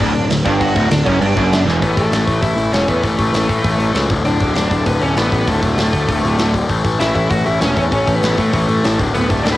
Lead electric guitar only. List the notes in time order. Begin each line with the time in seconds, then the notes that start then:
Already playing: D4 D5
0.45 D4 D5
0.60 F#4 F#5
0.91 D4 D5
1.05 C#4 C#5
1.21 D4 D5
1.82 B3 B4
1.98 A3 A4
2.42 E4 E5
2.73 C#4 C#5
2.89 B3 B4
3.04 A3 A4
4.25 D4 D5
4.86 B3 B4
5.01 C#4 C#5
5.16 B3 B4
5.48 A3 A4
7.00 E4 E5
7.15 E4 E5
7.31 F#4 F#5
7.46 E4 E5
7.60 C#4 C#5
7.77 C#4 C#5
7.92 C#4 C#5
8.15 B3 B4
8.39 A3 A4
8.55 A3 A4
9.14 B3 B4
9.30 A3 A4
9.43 D4 D5
9.52 B3 B4